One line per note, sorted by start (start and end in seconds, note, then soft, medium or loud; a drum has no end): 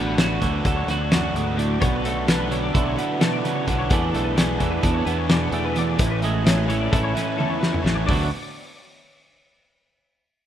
0.00 0.38 A1 medium
0.00 1.11 D2 medium
0.00 0.18 D3 medium
0.00 0.18 F#3 medium
0.00 0.18 A3 medium
0.00 2.05 B3 medium
0.00 0.19 D4 medium
0.00 0.20 F#4 medium
0.06 0.17 B4 medium
0.17 0.43 F#3 medium
0.17 0.42 A3 medium
0.17 0.41 D4 medium
0.17 0.66 F#4 medium
0.17 0.40 F#4 medium
0.17 0.29 C#5 medium
0.17 snare loud
0.17 closed hi-hat medium
0.29 0.41 B4 medium
0.41 0.63 D2 medium
0.41 2.50 D3 medium
0.41 0.89 D3 medium
0.41 0.63 F#3 medium
0.41 0.65 A3 medium
0.41 0.66 D4 medium
0.41 0.66 F#4 medium
0.41 0.53 C#5 medium
0.41 kick medium
0.41 snare soft
0.41 closed hi-hat medium
0.53 0.65 B4 medium
0.63 0.86 D2 medium
0.63 0.89 F#3 medium
0.63 0.88 A3 medium
0.63 0.88 D4 medium
0.63 0.86 F#4 medium
0.63 0.76 A4 medium
0.63 0.90 A4 medium
0.63 kick medium
0.63 closed hi-hat medium
0.76 0.89 C#5 medium
0.87 1.31 D2 medium
0.87 1.36 D3 medium
0.87 1.10 F#3 medium
0.87 1.11 A3 medium
0.87 1.12 D4 medium
0.87 1.13 F#4 medium
0.87 2.74 F#4 medium
0.87 1.01 B4 medium
0.87 snare soft
0.87 closed hi-hat medium
1.01 1.12 C#5 medium
1.11 1.35 F#2 medium
1.11 1.57 F#3 medium
1.11 1.37 A3 medium
1.11 1.35 D4 medium
1.11 1.34 F#4 medium
1.11 1.23 D5 medium
1.11 snare loud
1.11 closed hi-hat medium
1.23 1.35 F#5 medium
1.34 1.78 D2 medium
1.34 1.58 G#2 medium
1.34 1.58 A3 medium
1.34 1.58 D4 medium
1.34 1.59 F#4 medium
1.34 1.46 D5 medium
1.34 closed hi-hat medium
1.46 1.57 B4 medium
1.57 1.80 A2 medium
1.57 1.79 D3 medium
1.57 1.80 F#3 medium
1.57 1.82 A3 medium
1.57 1.82 D4 medium
1.57 1.83 F#4 medium
1.57 1.81 D5 medium
1.57 closed hi-hat medium
1.80 2.70 B1 loud
1.80 2.50 B2 medium
1.80 2.27 B2 loud
1.80 2.26 F#3 medium
1.80 2.06 B3 medium
1.80 2.05 D4 loud
1.80 2.03 F#4 loud
1.80 1.92 C#5 medium
1.80 kick loud
1.80 closed hi-hat medium
1.93 2.04 B4 medium
2.03 3.92 A3 medium
2.03 2.27 B3 soft
2.03 2.28 D4 medium
2.03 2.30 F#4 medium
2.03 2.17 A4 medium
2.03 closed hi-hat medium
2.17 2.27 F#4 medium
2.27 2.51 F#3 medium
2.27 2.50 B3 medium
2.27 2.97 B3 medium
2.27 2.49 D4 medium
2.27 2.49 F#4 medium
2.27 2.39 A4 medium
2.27 snare loud
2.27 closed hi-hat loud
2.39 2.50 B4 medium
2.49 2.98 B2 medium
2.49 3.67 D3 medium
2.49 2.72 F#3 medium
2.49 2.73 B3 medium
2.49 2.74 D4 medium
2.49 2.74 F#4 medium
2.49 2.62 C#5 medium
2.49 closed hi-hat medium
2.63 2.73 D5 medium
2.73 2.96 B1 medium
2.73 2.97 F#3 medium
2.73 2.96 B3 medium
2.73 2.96 D4 medium
2.73 3.88 E4 medium
2.73 2.95 F#4 medium
2.73 2.86 A4 medium
2.73 kick medium
2.73 closed hi-hat medium
2.86 2.97 C#5 medium
2.96 3.45 B2 medium
2.96 3.18 F#3 medium
2.96 3.19 B3 medium
2.96 3.88 B3 medium
2.96 3.20 D4 medium
2.96 3.21 F#4 loud
2.96 3.20 B4 medium
2.96 closed hi-hat medium
3.19 3.44 B2 medium
3.19 3.66 F#3 medium
3.19 3.44 B3 medium
3.19 3.43 D4 medium
3.19 3.41 F#4 medium
3.19 3.32 A4 medium
3.19 snare medium
3.19 closed hi-hat medium
3.33 3.44 D5 medium
3.42 3.67 C#3 medium
3.42 3.66 B3 medium
3.42 3.67 D4 medium
3.42 3.67 F#4 medium
3.42 3.55 B4 medium
3.42 snare soft
3.42 closed hi-hat medium
3.55 3.66 C#5 medium
3.65 3.89 B1 medium
3.65 3.88 B2 medium
3.65 3.91 D3 medium
3.65 3.88 F#3 medium
3.65 3.89 B3 medium
3.65 3.89 D4 loud
3.65 3.90 F#4 medium
3.65 3.78 B4 medium
3.65 kick medium
3.65 closed hi-hat medium
3.78 3.89 C#5 medium
3.88 4.12 E2 loud
3.88 5.75 E2 medium
3.88 4.35 E3 medium
3.88 4.60 E3 medium
3.88 4.14 B3 medium
3.88 4.12 D4 loud
3.88 4.10 G#4 loud
3.88 4.13 F#5 medium
3.88 kick loud
3.88 closed hi-hat medium
3.93 4.15 A3 medium
3.93 4.37 B3 medium
3.93 4.82 D4 medium
4.12 4.57 B1 medium
4.12 4.36 B3 medium
4.12 4.37 D4 medium
4.12 4.37 G#4 medium
4.12 4.25 A4 medium
4.12 closed hi-hat medium
4.16 5.53 A3 medium
4.24 4.35 B4 medium
4.35 4.62 E3 medium
4.35 4.59 B3 medium
4.35 5.06 B3 medium
4.35 4.59 D4 medium
4.35 4.57 G#4 medium
4.35 4.47 C#5 medium
4.35 snare loud
4.35 closed hi-hat medium
4.47 4.59 B4 medium
4.58 4.82 E2 medium
4.58 5.97 E3 medium
4.58 4.80 E3 medium
4.58 4.81 B3 medium
4.58 4.82 D4 medium
4.58 4.83 G#4 medium
4.58 4.70 C#5 medium
4.58 kick medium
4.58 closed hi-hat medium
4.71 4.82 B4 medium
4.81 5.05 E2 loud
4.81 5.06 E3 medium
4.81 5.05 B3 medium
4.81 5.99 D4 medium
4.81 5.04 D4 medium
4.81 5.03 G#4 medium
4.81 4.93 A4 medium
4.81 kick loud
4.81 closed hi-hat medium
4.94 5.05 C#5 medium
5.05 5.49 E2 medium
5.05 5.27 E3 medium
5.05 5.29 B3 medium
5.05 5.97 B3 medium
5.05 5.30 D4 medium
5.05 5.31 G#4 medium
5.05 5.17 B4 medium
5.05 closed hi-hat medium
5.17 5.29 C#5 medium
5.29 5.96 B2 medium
5.29 5.74 E3 medium
5.29 5.54 B3 medium
5.29 5.52 D4 medium
5.29 5.51 G#4 medium
5.29 5.41 D5 medium
5.29 snare loud
5.29 closed hi-hat medium
5.41 5.53 F#5 medium
5.52 5.95 E2 medium
5.52 6.24 A3 medium
5.52 5.76 B3 medium
5.52 5.77 D4 medium
5.52 5.78 G#4 medium
5.52 5.64 D5 medium
5.52 closed hi-hat medium
5.65 5.76 B4 medium
5.75 5.97 E2 medium
5.75 5.97 E3 medium
5.75 5.98 B3 medium
5.75 5.99 D4 medium
5.75 5.99 G#4 loud
5.75 5.99 D5 medium
5.75 closed hi-hat medium
5.97 6.88 A1 loud
5.97 6.45 A2 medium
5.97 7.39 A2 medium
5.97 6.42 E3 medium
5.97 6.23 A3 loud
5.97 6.21 C#4 loud
5.97 6.20 E4 loud
5.97 6.10 C#5 medium
5.97 kick loud
5.97 closed hi-hat loud
6.11 6.22 B4 medium
6.21 7.62 G#3 medium
6.21 6.44 A3 medium
6.21 6.44 C#4 medium
6.21 6.45 E4 medium
6.21 6.34 A4 medium
6.21 closed hi-hat medium
6.34 6.45 F#4 medium
6.43 6.68 E3 medium
6.43 6.67 A3 medium
6.43 6.66 C#4 medium
6.43 6.66 E4 medium
6.43 6.57 A4 medium
6.43 snare loud
6.43 closed hi-hat loud
6.48 7.15 C#4 medium
6.57 6.68 B4 medium
6.67 7.15 A2 medium
6.67 6.89 E3 medium
6.67 8.06 E3 medium
6.67 6.90 A3 medium
6.67 6.91 C#4 medium
6.67 6.92 E4 medium
6.67 6.80 C#5 medium
6.67 closed hi-hat medium
6.80 6.92 D5 medium
6.90 7.14 A1 medium
6.90 7.15 E3 medium
6.90 7.15 A3 medium
6.90 7.14 C#4 medium
6.90 7.13 E4 medium
6.90 8.06 E4 medium
6.90 7.03 A4 medium
6.90 kick loud
6.90 closed hi-hat medium
7.03 7.14 C#5 medium
7.14 7.62 A2 medium
7.14 7.36 E3 medium
7.14 7.37 A3 medium
7.14 7.38 C#4 loud
7.14 8.06 C#4 medium
7.14 7.38 E4 medium
7.14 7.38 B4 medium
7.14 snare soft
7.14 closed hi-hat medium
7.37 7.85 E2 medium
7.37 7.82 E3 medium
7.37 7.61 A3 medium
7.37 7.60 C#4 medium
7.37 7.59 E4 medium
7.37 7.49 A4 medium
7.37 high tom medium
7.49 7.59 C#5 medium
7.60 7.83 A3 soft
7.60 7.83 C#4 medium
7.60 7.83 E4 medium
7.60 7.72 B4 medium
7.60 snare medium
7.72 7.84 C#5 medium
7.72 mid tom medium
7.82 8.06 A1 medium
7.82 8.05 A2 medium
7.82 8.08 A2 medium
7.82 8.04 E3 medium
7.82 8.05 A3 medium
7.82 8.06 C#4 loud
7.82 8.06 E4 loud
7.82 7.94 B4 medium
7.86 snare medium
7.94 8.06 C#5 medium
8.05 8.30 D2 loud
8.05 8.29 D2 medium
8.05 8.25 D3 medium
8.05 8.25 F#3 loud
8.05 8.26 A3 loud
8.05 8.26 D4 loud
8.05 8.29 D5 medium
8.05 kick medium
8.05 open hi-hat medium
8.09 8.29 D3 medium
8.09 8.30 B3 medium
8.09 8.30 F#4 medium